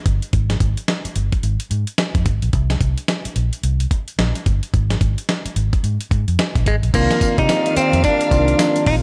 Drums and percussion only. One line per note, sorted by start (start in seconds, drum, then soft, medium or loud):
0.06 kick medium
0.06 closed hi-hat medium
0.22 closed hi-hat soft
0.33 kick loud
0.33 closed hi-hat medium
0.50 snare medium
0.50 closed hi-hat medium
0.60 kick medium
0.60 closed hi-hat medium
0.77 closed hi-hat soft
0.88 snare medium
0.88 closed hi-hat medium
1.05 closed hi-hat medium
1.16 closed hi-hat medium
1.32 kick medium
1.32 closed hi-hat medium
1.43 closed hi-hat medium
1.60 closed hi-hat medium
1.71 closed hi-hat medium
1.87 closed hi-hat soft
1.98 snare loud
1.98 closed hi-hat medium
2.15 kick medium
2.15 closed hi-hat medium
2.26 kick medium
2.26 closed hi-hat medium
2.42 closed hi-hat soft
2.53 kick loud
2.53 closed hi-hat medium
2.70 snare medium
2.70 closed hi-hat medium
2.81 kick medium
2.81 closed hi-hat medium
2.98 closed hi-hat soft
3.08 snare medium
3.08 closed hi-hat medium
3.25 closed hi-hat medium
3.36 closed hi-hat medium
3.53 closed hi-hat soft
3.63 closed hi-hat medium
3.80 closed hi-hat soft
3.91 kick medium
3.91 closed hi-hat medium
4.08 closed hi-hat soft
4.19 snare loud
4.19 closed hi-hat medium
4.35 closed hi-hat medium
4.46 kick medium
4.46 closed hi-hat medium
4.63 closed hi-hat soft
4.74 kick loud
4.74 closed hi-hat medium
4.90 snare medium
4.90 closed hi-hat soft
5.01 kick medium
5.01 closed hi-hat medium
5.18 closed hi-hat soft
5.29 snare medium
5.29 closed hi-hat medium
5.46 closed hi-hat medium
5.56 closed hi-hat medium
5.73 kick medium
5.73 closed hi-hat soft
5.84 closed hi-hat medium
6.01 closed hi-hat medium
6.11 kick medium
6.11 closed hi-hat medium
6.28 closed hi-hat soft
6.39 snare loud
6.39 closed hi-hat medium
6.55 kick medium
6.55 closed hi-hat medium
6.66 kick medium
6.66 closed hi-hat medium
6.83 closed hi-hat soft
6.94 kick loud
6.94 closed hi-hat medium
6.94 crash loud
6.94 tambourine medium
7.11 snare medium
7.11 closed hi-hat medium
7.21 kick medium
7.21 closed hi-hat medium
7.21 tambourine medium
7.38 kick medium
7.38 closed hi-hat medium
7.49 snare loud
7.49 closed hi-hat medium
7.49 tambourine medium
7.66 closed hi-hat medium
7.76 closed hi-hat medium
7.76 tambourine medium
7.93 closed hi-hat medium
8.04 kick loud
8.04 closed hi-hat medium
8.04 tambourine medium
8.21 closed hi-hat medium
8.31 kick medium
8.31 closed hi-hat medium
8.31 tambourine medium
8.48 closed hi-hat soft
8.59 snare loud
8.59 closed hi-hat medium
8.59 tambourine loud
8.76 closed hi-hat medium
8.86 kick loud
8.86 open hi-hat medium